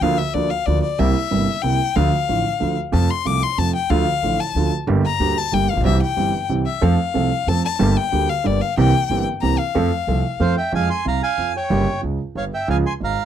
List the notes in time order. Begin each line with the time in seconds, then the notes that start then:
0.01 D2 D3 F3 A#3 F4 F5
0.18 E5
0.34 D2 D3 F3 A#3 F4 D5
0.50 F5
0.66 D2 D3 F3 A#3 F4 D5
0.83 D5
0.99 C2 C3 G3 A#3 E4 E5
1.31 G1 G2 C3 G3 A#3 E4
1.62 C2 C3 G3 A#3 E4 G5
1.95 D2 D3 F3 A3 F4 F5
2.28 A1 A2 D3 F3 A3 F4
2.60 D2 D3 F3 A3 F4
2.92 F2 C3 F3 A3 F4 A5
3.10 C6
3.25 C2 C3 F3 A3 F4 D6
3.43 C6
3.58 F2 C3 F3 A3 F4 A5
3.75 G5
3.90 D2 D3 F3 A3 F4 F5
4.23 A1 A2 D3 F3 A3 F4
4.40 A5
4.55 D2 D3 F3 A3 F4
4.87 G1 G2 D3 G3 A#3 G4
5.06 A#5
5.20 D2 D3 G3 A#3 G4
5.38 A5
5.52 G1 G2 D3 G3 A#3 G4 G5
5.70 A1 F5
5.77 A#1 B1
5.84 C2 C3 E3 G3 C4 G4 E5
6.02 G5
6.16 G1 G2 E3 G3 C4 G4
6.49 C2 C3 E3 G3 C4 G4
6.66 E5
6.81 F2 F3 A3 C4 A4 F5
7.14 C2 C3 F3 A3 C4 A4
7.47 F2 F3 A3 C4 A4 A5
7.65 A5
7.79 G1 G2 D3 G3 A#3 G4
7.97 G5
8.12 D2 D3 G3 A#3 G4
8.29 F5
8.44 G1 G2 D3 G3 A#3 G4 D5
8.62 F5
8.77 C2 C3 E3 A#3 C4 G4 G5
9.10 G1 G2 E3 A#3 C4 G4
9.42 C2 C3 E3 A#3 C4 G4 A#5
9.58 F5
9.75 F2 F3 A3 C4 A4
10.07 C2 C3 F3 A3 C4 A4
10.40 F2 F3 A3 C4 A4 C5 F5
10.57 E5 G5
10.72 F2 F3 G#3 C4 G#4 F5 G#5
10.90 G#5 C6
11.05 C2 C3 F5 A#5
11.23 F5 G#5
11.38 F2 F3
11.57 C#5 G5
11.70 G1 G2 C#3 G3 A#3 G4
12.02 C#2 C#3
12.35 G1 G2 C#5 F5
12.54 E5 G5
12.68 C#2 C#3 F3 G#3 F4 F5 G#5
12.86 G#5 C6
13.00 G#1 G#2 F5
13.04 A#5